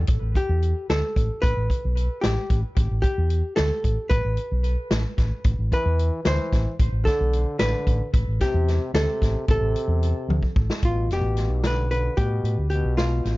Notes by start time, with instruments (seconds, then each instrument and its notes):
0.07 fingered electric bass A1, kick, closed hi-hat
0.21 fingered electric bass A1
0.35 hollow-body jazz guitar G4, kick, closed hi-hat
0.49 fingered electric bass E2
0.62 closed hi-hat
0.90 fingered electric bass D2, hollow-body jazz guitar A4, snare, closed hi-hat
1.16 fingered electric bass A1, kick, closed hi-hat
1.42 fingered electric bass A1, hollow-body jazz guitar B4, kick, closed hi-hat
1.57 fingered electric bass A1
1.70 kick, closed hi-hat
1.85 fingered electric bass B1
1.97 closed hi-hat
2.21 fingered electric bass A1, hollow-body jazz guitar G4, snare, closed hi-hat
2.50 fingered electric bass A1, kick, closed hi-hat
2.76 fingered electric bass A1, kick, closed hi-hat
2.91 fingered electric bass A1
3.02 hollow-body jazz guitar G4, kick, closed hi-hat
3.18 fingered electric bass E2
3.30 closed hi-hat
3.56 fingered electric bass D2, hollow-body jazz guitar A4, snare, closed hi-hat
3.84 fingered electric bass A1, kick, closed hi-hat
4.09 fingered electric bass A1, hollow-body jazz guitar B4, kick, closed hi-hat
4.25 fingered electric bass A1
4.37 closed hi-hat
4.51 fingered electric bass B1
4.64 closed hi-hat
4.91 fingered electric bass A1, snare, closed hi-hat
5.18 fingered electric bass A1, kick, snare, closed hi-hat
5.44 fingered electric bass A1, kick, closed hi-hat
5.59 fingered electric bass A1
5.72 trombone E3, hollow-body jazz guitar B4, kick, closed hi-hat
5.86 fingered electric bass E2
5.99 closed hi-hat
6.24 fingered electric bass D2, trombone E3, hollow-body jazz guitar C5, snare, closed hi-hat
6.52 fingered electric bass A1, kick, snare, closed hi-hat
6.80 fingered electric bass A1, kick, closed hi-hat
6.92 fingered electric bass A1
7.05 trombone D3, hollow-body jazz guitar A4, kick, snare, closed hi-hat
7.20 fingered electric bass B1
7.33 closed hi-hat
7.59 fingered electric bass A1, trombone D3, hollow-body jazz guitar B4, snare, closed hi-hat
7.87 fingered electric bass A1, kick, closed hi-hat
8.14 fingered electric bass A1, kick, closed hi-hat
8.28 fingered electric bass A1
8.41 trombone C3, hollow-body jazz guitar G4, kick, snare, closed hi-hat
8.54 fingered electric bass E2
8.68 snare, closed hi-hat
8.94 fingered electric bass D2, trombone C3, hollow-body jazz guitar A4, snare, closed hi-hat
9.22 fingered electric bass A1, kick, snare, closed hi-hat
9.48 fingered electric bass A1, trombone C3, hollow-body jazz guitar A4, kick, closed hi-hat
9.61 fingered electric bass A1
9.76 closed hi-hat
9.88 fingered electric bass E2
10.03 closed hi-hat
10.29 fingered electric bass D2, high tom
10.43 kick
10.56 fingered electric bass A1, kick
10.70 snare
10.83 fingered electric bass A1, trombone B2, hollow-body jazz guitar F4, kick, closed hi-hat
11.08 fingered electric bass F1, trombone B2, snare, closed hi-hat
11.13 hollow-body jazz guitar G4
11.21 fingered electric bass A1
11.37 snare, closed hi-hat
11.49 fingered electric bass B1
11.64 trombone D3, hollow-body jazz guitar B4, snare, closed hi-hat
11.90 trombone D3, hollow-body jazz guitar B4, closed hi-hat
12.17 fingered electric bass A2, trombone B2, hollow-body jazz guitar G4, kick, closed hi-hat
12.43 fingered electric bass A2, closed hi-hat
12.58 fingered electric bass D2
12.70 trombone B2, hollow-body jazz guitar G4, closed hi-hat
12.84 fingered electric bass B1
12.97 trombone B2, hollow-body jazz guitar F4, snare, closed hi-hat
13.25 fingered electric bass A1, snare, closed hi-hat